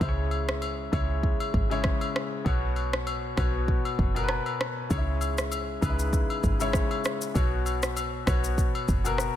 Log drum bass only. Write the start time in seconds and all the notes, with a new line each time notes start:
0.01 C#2
0.93 C#2
1.54 G#1
2.46 B1
3.38 B1
3.99 F#1
4.91 C#2
5.82 C#2
6.44 G#1
7.36 B1
8.27 B1
8.89 F#1